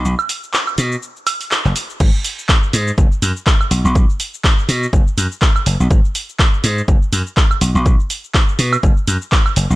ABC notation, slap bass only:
X:1
M:4/4
L:1/16
Q:"Swing 16ths" 1/4=123
K:B
V:1 name="Slap bass" clef=bass
B,,, z4 z B,, z6 F,,, z2 | G,,, z4 z G,, z F,,, z F,, z3 B,,, B,,, | B,,, z4 z B,, z F,,, z F,, z3 F,,, B,,, | G,,, z4 z G,, z F,,, z F,, z3 B,,, B,,, |
B,,, z4 z B,, z F,,, z F,, z3 F,,, B,,, |]